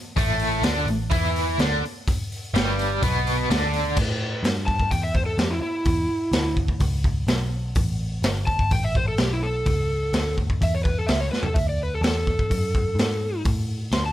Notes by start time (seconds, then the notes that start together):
0.16 A1 A2 A3, kick, open hi-hat
0.39 open hi-hat
0.62 D2 D3 D4, snare, open hi-hat
0.85 A1 A2, open hi-hat
1.10 E2 E3 E4, kick, open hi-hat
1.36 open hi-hat
1.58 D2 D3 D4, snare, open hi-hat
1.85 open hi-hat
2.08 kick, open hi-hat
2.32 open hi-hat
2.53 G1 G2 G3, snare, open hi-hat
2.79 open hi-hat
3.02 B1 B2 B3, kick, open hi-hat
3.27 open hi-hat
3.50 D2 D3 D4, snare, open hi-hat
3.74 open hi-hat
3.96 A2, kick, crash
4.43 G2, snare, open hi-hat
4.67 A5, kick
4.79 kick
4.91 E2 G5, kick, open hi-hat
5.03 E5
5.15 C5, kick
5.26 A4
5.38 F2 G4, snare, open hi-hat
5.51 E4
5.61 E4, muted picked electric bass stroke
5.85 E2, kick, open hi-hat
6.09 muted picked electric bass stroke
6.32 D2, snare, open hi-hat
6.57 kick
6.68 kick
6.80 C#2, kick, open hi-hat
7.04 kick
7.27 B1, snare, open hi-hat
7.75 A1, kick, open hi-hat
8.22 G1, snare, open hi-hat
8.47 A5, kick
8.59 kick
8.71 A1 G5, kick, open hi-hat
8.84 E5
8.95 C5, kick
9.08 A4
9.18 B1 G4, snare, open hi-hat
9.33 E4
9.43 A4
9.66 C#2, kick, open hi-hat
10.13 D2, snare, open hi-hat
10.38 kick
10.50 kick
10.61 E2 E5, kick, open hi-hat
10.74 C#5
10.84 B4, kick
10.98 A4
11.06 C#2 E5, snare, open hi-hat
11.21 C#5
11.32 B4, snare
11.43 A4, floor tom
11.54 D2 E5, kick, open hi-hat
11.69 D5
11.83 B4
11.94 A4
12.01 E2 A4, snare, open hi-hat
12.27 kick
12.39 kick
12.50 F#2, kick, open hi-hat
12.75 kick
12.95 G#2, open hi-hat
12.99 snare
13.45 A2, kick, open hi-hat
13.92 D2 C6, snare, open hi-hat
14.06 A5